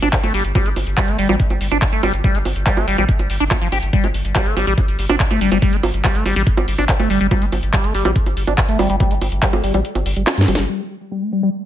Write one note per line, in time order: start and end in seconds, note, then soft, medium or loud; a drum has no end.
0.02 0.10 G1 medium
0.02 0.09 D4 medium
0.02 closed hi-hat medium
0.02 high bongo soft
0.13 kick loud
0.13 clap loud
0.13 closed hi-hat medium
0.23 0.31 G1 medium
0.23 0.33 A3 medium
0.23 closed hi-hat medium
0.23 high bongo soft
0.34 0.42 G1 loud
0.34 0.44 G3 medium
0.34 open hi-hat medium
0.45 0.52 G1 medium
0.45 closed hi-hat medium
0.55 0.67 G3 medium
0.55 kick loud
0.55 closed hi-hat medium
0.55 high bongo medium
0.66 0.73 G1 medium
0.66 0.70 A3 medium
0.66 closed hi-hat medium
0.76 0.84 G1 loud
0.76 open hi-hat loud
0.76 high bongo soft
0.87 0.94 G1 loud
0.87 closed hi-hat medium
0.97 1.10 G3 medium
0.97 kick loud
0.97 clap loud
0.97 closed hi-hat medium
0.97 high bongo soft
1.08 1.16 G1 medium
1.08 1.18 A3 loud
1.08 closed hi-hat medium
1.19 1.26 G1 loud
1.19 1.28 G3 medium
1.19 open hi-hat loud
1.29 1.37 A1 medium
1.29 1.36 G3 loud
1.29 closed hi-hat medium
1.29 high bongo medium
1.40 kick loud
1.40 closed hi-hat medium
1.50 1.58 G1 medium
1.50 closed hi-hat medium
1.50 high bongo soft
1.61 1.68 G1 loud
1.61 open hi-hat loud
1.71 1.79 G1 medium
1.71 1.78 D4 medium
1.71 closed hi-hat medium
1.71 high bongo soft
1.82 kick loud
1.82 clap loud
1.82 closed hi-hat medium
1.93 2.00 G1 medium
1.93 2.02 A3 medium
1.93 closed hi-hat medium
2.03 2.11 G1 loud
2.03 2.13 G3 medium
2.03 open hi-hat medium
2.03 high bongo medium
2.14 2.21 G1 medium
2.14 closed hi-hat medium
2.24 2.36 G3 medium
2.24 kick loud
2.24 closed hi-hat medium
2.24 high bongo soft
2.35 2.42 G1 medium
2.35 2.39 A3 medium
2.35 closed hi-hat medium
2.45 2.53 G1 loud
2.45 open hi-hat loud
2.45 high bongo soft
2.56 2.63 G1 medium
2.56 closed hi-hat medium
2.66 2.79 G3 medium
2.66 kick loud
2.66 clap loud
2.66 closed hi-hat medium
2.77 2.85 G1 medium
2.77 2.87 A3 loud
2.77 closed hi-hat medium
2.77 high bongo medium
2.88 2.95 G1 loud
2.88 2.97 G3 medium
2.88 open hi-hat loud
2.98 3.06 A1 medium
2.98 3.04 G3 loud
2.98 closed hi-hat medium
2.98 high bongo soft
3.09 kick loud
3.09 closed hi-hat medium
3.19 3.27 G1 medium
3.19 closed hi-hat medium
3.19 high bongo soft
3.30 3.37 G1 loud
3.30 open hi-hat loud
3.40 3.48 G1 loud
3.40 3.44 D4 loud
3.40 closed hi-hat medium
3.51 3.57 A3 medium
3.51 kick loud
3.51 clap loud
3.51 closed hi-hat medium
3.51 high bongo medium
3.62 3.69 G1 medium
3.62 3.68 F3 loud
3.62 closed hi-hat medium
3.72 3.80 G1 loud
3.72 3.78 G4 medium
3.72 open hi-hat medium
3.72 high bongo soft
3.83 3.90 G1 medium
3.83 closed hi-hat medium
3.93 4.05 G3 medium
3.93 kick loud
3.93 closed hi-hat medium
4.04 4.11 G1 medium
4.04 4.08 A3 medium
4.04 closed hi-hat medium
4.04 high bongo soft
4.14 4.22 G1 loud
4.14 open hi-hat loud
4.25 4.32 G1 medium
4.25 closed hi-hat medium
4.35 4.48 G3 medium
4.35 kick loud
4.35 clap loud
4.35 closed hi-hat medium
4.35 high bongo medium
4.46 4.54 G1 medium
4.46 4.56 A3 loud
4.46 closed hi-hat medium
4.57 4.64 G1 loud
4.57 4.66 G3 medium
4.57 open hi-hat loud
4.57 high bongo soft
4.67 4.75 A1 medium
4.67 4.73 G3 loud
4.67 closed hi-hat medium
4.78 kick loud
4.78 closed hi-hat medium
4.78 high bongo soft
4.88 4.96 G1 medium
4.88 closed hi-hat medium
4.99 5.06 G1 loud
4.99 open hi-hat loud
5.09 5.17 G1 medium
5.09 5.16 D4 medium
5.09 closed hi-hat medium
5.09 high bongo medium
5.20 kick loud
5.20 clap loud
5.20 closed hi-hat medium
5.30 5.38 G1 medium
5.30 5.40 A3 medium
5.30 closed hi-hat medium
5.30 high bongo soft
5.41 5.49 G1 loud
5.41 5.51 G3 medium
5.41 open hi-hat medium
5.52 5.59 G1 medium
5.52 5.58 G3 medium
5.52 closed hi-hat medium
5.52 high bongo soft
5.62 5.74 G3 medium
5.62 kick loud
5.62 closed hi-hat medium
5.73 5.80 G1 medium
5.73 5.77 A3 medium
5.73 closed hi-hat medium
5.83 5.91 G1 loud
5.83 open hi-hat loud
5.83 high bongo medium
5.94 6.01 G1 loud
5.94 closed hi-hat medium
6.04 6.17 G3 medium
6.04 kick loud
6.04 clap loud
6.04 closed hi-hat medium
6.04 high bongo soft
6.15 6.23 G1 medium
6.15 6.25 A3 loud
6.15 closed hi-hat medium
6.26 6.33 G1 medium
6.26 6.35 G3 medium
6.26 open hi-hat medium
6.26 high bongo soft
6.36 6.44 A1 loud
6.36 6.43 G3 loud
6.36 closed hi-hat medium
6.47 kick loud
6.47 closed hi-hat medium
6.57 6.65 G1 medium
6.57 closed hi-hat medium
6.57 high bongo medium
6.68 6.75 G1 loud
6.68 open hi-hat loud
6.78 6.86 G1 medium
6.78 6.85 D4 medium
6.78 closed hi-hat medium
6.78 high bongo soft
6.89 kick loud
6.89 clap loud
6.89 closed hi-hat medium
7.00 7.07 G1 medium
7.00 7.09 A3 medium
7.00 closed hi-hat medium
7.00 high bongo soft
7.10 7.18 G1 loud
7.10 7.20 G3 medium
7.10 open hi-hat medium
7.21 7.28 G1 medium
7.21 7.27 G3 medium
7.21 closed hi-hat medium
7.31 7.43 G3 medium
7.31 kick loud
7.31 closed hi-hat medium
7.31 high bongo medium
7.42 7.49 G1 medium
7.42 7.46 A3 medium
7.42 closed hi-hat medium
7.52 7.60 G1 loud
7.52 open hi-hat loud
7.52 high bongo soft
7.63 7.70 G1 loud
7.63 closed hi-hat medium
7.73 7.85 G3 medium
7.73 kick loud
7.73 clap loud
7.73 closed hi-hat medium
7.73 high bongo soft
7.84 7.92 G1 medium
7.84 7.94 A3 loud
7.84 closed hi-hat medium
7.95 8.02 G1 loud
7.95 8.04 G3 medium
7.95 open hi-hat medium
8.05 8.13 A1 loud
8.05 8.12 G3 loud
8.05 closed hi-hat medium
8.05 high bongo medium
8.16 kick loud
8.16 closed hi-hat medium
8.26 8.34 G1 medium
8.26 closed hi-hat medium
8.26 high bongo soft
8.37 8.44 G1 loud
8.37 open hi-hat loud
8.47 8.55 G1 medium
8.47 8.54 D4 medium
8.47 closed hi-hat medium
8.47 high bongo soft
8.58 kick loud
8.58 clap loud
8.58 closed hi-hat medium
8.69 8.76 G1 medium
8.69 8.78 A3 medium
8.69 closed hi-hat medium
8.79 8.87 G1 loud
8.79 8.89 G3 medium
8.79 open hi-hat medium
8.79 high bongo medium
8.90 8.97 G1 medium
8.90 8.96 G3 medium
8.90 closed hi-hat medium
9.00 9.12 G3 medium
9.00 kick loud
9.00 closed hi-hat medium
9.00 high bongo soft
9.11 9.18 G1 medium
9.11 9.15 A3 medium
9.11 closed hi-hat medium
9.21 9.29 G1 loud
9.21 open hi-hat loud
9.21 high bongo soft
9.32 9.39 G1 loud
9.32 closed hi-hat medium
9.43 9.55 G3 medium
9.43 kick loud
9.43 clap loud
9.43 closed hi-hat medium
9.53 9.61 G1 medium
9.53 9.63 A3 loud
9.53 closed hi-hat medium
9.53 high bongo medium
9.64 9.71 G1 loud
9.64 9.73 G3 medium
9.64 open hi-hat loud
9.74 9.82 A1 loud
9.74 9.81 G3 loud
9.74 closed hi-hat medium
9.74 high bongo soft
9.85 closed hi-hat medium
9.95 10.03 G1 medium
9.95 closed hi-hat medium
9.95 high bongo soft
10.06 10.13 G1 loud
10.06 open hi-hat loud
10.16 10.24 G1 medium
10.16 10.23 G3 medium
10.16 closed hi-hat medium
10.27 snare medium
10.27 clap loud
10.27 closed hi-hat medium
10.27 high bongo medium
10.38 10.45 G2 medium
10.38 10.41 G3 medium
10.38 snare medium
10.38 closed hi-hat medium
10.48 10.56 G1 loud
10.48 10.54 G3 loud
10.48 open hi-hat medium
10.48 high bongo soft
10.55 10.66 G1 medium
10.55 10.65 G3 medium
10.55 snare medium
10.55 closed hi-hat medium
10.69 10.81 G3 medium
10.80 10.84 A3 medium
11.12 11.24 G3 medium
11.22 11.32 A3 loud
11.33 11.42 G3 medium
11.43 11.50 G3 loud